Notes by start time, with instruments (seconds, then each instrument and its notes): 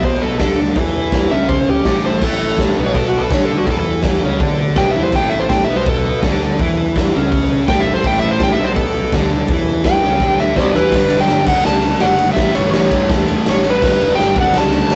Already playing: fingered electric bass B1, distorted electric guitar B2 B3
0.03 transistor combo organ E4 A4, electric slide guitar C5, kick, open hi-hat
0.07 transistor combo organ C#5
0.22 electric slide guitar A4
0.39 fingered electric bass D2, distorted electric guitar D3 D4, transistor combo organ E4 A4 C#5, electric slide guitar A4, kick, snare, open hi-hat
0.75 fingered electric bass E2, distorted electric guitar E3 E4, transistor combo organ E4 A4 C#5, kick, open hi-hat
1.11 transistor combo organ E4 A4 C#5, kick, snare, open hi-hat
1.31 fingered electric bass C#2, distorted electric guitar C#3 C#4, electric slide guitar E5
1.48 transistor combo organ E4 A4 C#5, electric slide guitar C5, kick, open hi-hat
1.70 electric slide guitar G4
1.85 fingered electric bass A1, distorted electric guitar A2 A3, transistor combo organ E4 A4, kick, snare, open hi-hat
1.89 transistor combo organ B4
2.06 electric slide guitar C5
2.21 fingered electric bass A1, distorted electric guitar A2 A3, transistor combo organ E4 A4 C#5, electric slide guitar A4, kick, crash
2.58 transistor combo organ E4 A4, kick, snare, open hi-hat
2.63 transistor combo organ C#5
2.77 fingered electric bass B1, distorted electric guitar B2 B3
2.86 electric slide guitar C#5
2.95 transistor combo organ E4 A4, electric slide guitar A4, kick, open hi-hat
3.00 transistor combo organ C#5
3.08 electric slide guitar F#4
3.17 electric slide guitar A4
3.30 fingered electric bass D2, distorted electric guitar D3, transistor combo organ E4, electric slide guitar C#5, kick, snare, open hi-hat
3.34 distorted electric guitar D4, transistor combo organ A4 C#5
3.45 electric slide guitar A4
3.58 electric slide guitar F#4
3.66 fingered electric bass E2, distorted electric guitar E3 E4, transistor combo organ E4 A4, electric slide guitar A4, kick, open hi-hat
3.71 transistor combo organ B4
3.80 electric slide guitar A4
4.02 transistor combo organ E4 A4 C#5, kick, snare, open hi-hat
4.22 fingered electric bass C#2, distorted electric guitar C#3 C#4
4.40 fingered electric bass D2, distorted electric guitar D3 D4, transistor combo organ E4 A4 C#5, kick, open hi-hat
4.76 fingered electric bass B1, distorted electric guitar B2 B3, transistor combo organ E4 A4, electric slide guitar G5, kick, snare, open hi-hat
4.81 transistor combo organ C#5
4.91 electric slide guitar E5
4.95 fingered electric bass E2, distorted electric guitar E3 E4
5.03 electric slide guitar C5
5.12 fingered electric bass A1, distorted electric guitar A2 A3, transistor combo organ E4, electric slide guitar G5, kick, crash
5.17 transistor combo organ A4 C#5
5.30 electric slide guitar E5
5.39 electric slide guitar C5
5.49 transistor combo organ E4 A4, electric slide guitar G5, kick, snare, open hi-hat
5.54 transistor combo organ E5
5.65 distorted electric guitar B2, electric slide guitar E5
5.70 fingered electric bass B1, distorted electric guitar B3
5.76 electric slide guitar C5
5.86 transistor combo organ E4 A4, electric slide guitar A4, kick, open hi-hat
5.91 transistor combo organ C#5
6.22 fingered electric bass D2, distorted electric guitar D3 D4, transistor combo organ E4 A4 C#5, kick, snare, open hi-hat
6.59 fingered electric bass E2, distorted electric guitar E3 E4, transistor combo organ E4 A4 E5, kick, open hi-hat
6.96 transistor combo organ E4 A4 E5, kick, snare, open hi-hat
7.16 fingered electric bass C#2, distorted electric guitar C#3 C#4
7.31 transistor combo organ E4 A4 C#5, kick, open hi-hat
7.68 fingered electric bass A1, distorted electric guitar A2 A3, transistor combo organ E4 A4 C#5, electric slide guitar G5, kick, snare
7.80 electric slide guitar E5
7.94 electric slide guitar C5
8.04 fingered electric bass A1, distorted electric guitar A2 A3, transistor combo organ E4 B4, electric slide guitar G5, kick, crash
8.09 transistor combo organ A4
8.20 electric slide guitar E5
8.31 electric slide guitar C5
8.40 transistor combo organ E4 A4 C#5, electric slide guitar G5, kick, snare, open hi-hat
8.52 electric slide guitar E5
8.59 fingered electric bass B1, distorted electric guitar B2 B3
8.64 electric slide guitar C5
8.76 transistor combo organ E4, electric slide guitar A4, kick, open hi-hat
8.80 transistor combo organ A4 C#5
9.12 fingered electric bass D2, distorted electric guitar D3, transistor combo organ E4 A4 C#5, kick, snare, open hi-hat
9.17 distorted electric guitar D4
9.47 fingered electric bass E2, transistor combo organ E4, kick, open hi-hat
9.51 distorted electric guitar E3 E4, transistor combo organ A4 C#5
9.83 transistor combo organ E4 A4 E5, kick, snare, open hi-hat
9.87 electric slide guitar G5
10.03 fingered electric bass C#2, distorted electric guitar C#3 C#4
10.19 fingered electric bass D2, distorted electric guitar D3 D4, transistor combo organ E4 A4 C#5, kick, snare
10.38 electric slide guitar E5, snare
10.54 fingered electric bass B1, distorted electric guitar B2 B3, transistor combo organ E4 A4 C#5, electric slide guitar C5, kick, snare
10.59 electric slide guitar D5
10.74 fingered electric bass E2, distorted electric guitar E3 E4, electric slide guitar B4, snare
10.92 fingered electric bass G1, distorted electric guitar G2, kick, snare, crash
10.96 distorted electric guitar D3 G3
11.10 fingered electric bass E1, ride
11.20 electric slide guitar G5
11.27 fingered electric bass G1, snare, ride
11.46 fingered electric bass F#1, distorted electric guitar D3 A3, electric slide guitar F#5, kick, crash
11.52 distorted electric guitar D4
11.65 fingered electric bass C#2, electric slide guitar A5, snare
11.82 ride
12.00 fingered electric bass F#1, electric slide guitar F#5, snare, ride
12.18 ride
12.33 fingered electric bass A1, electric slide guitar E5, kick, snare, ride
12.38 distorted electric guitar A2 E3
12.42 distorted electric guitar A3
12.55 fingered electric bass G1, electric slide guitar C#5, ride
12.73 fingered electric bass A1, electric slide guitar C#5, snare, ride
12.91 fingered electric bass G2, kick, ride
13.10 fingered electric bass E2, kick, snare, ride
13.28 ride
13.46 fingered electric bass A1, snare, ride
13.51 electric slide guitar C#5
13.64 distorted electric guitar A2 E3 A3, ride
13.70 electric slide guitar B4
13.82 fingered electric bass G1, distorted electric guitar G2 D3, kick, snare, crash
13.88 distorted electric guitar G3
14.00 fingered electric bass E1, ride
14.15 fingered electric bass G1, electric slide guitar G5, snare, ride
14.35 fingered electric bass F#1, distorted electric guitar D3, kick, ride
14.40 distorted electric guitar A3 D4, electric slide guitar F#5
14.54 fingered electric bass C#2, snare, ride
14.58 electric slide guitar A5
14.73 ride
14.90 fingered electric bass G#1, snare, ride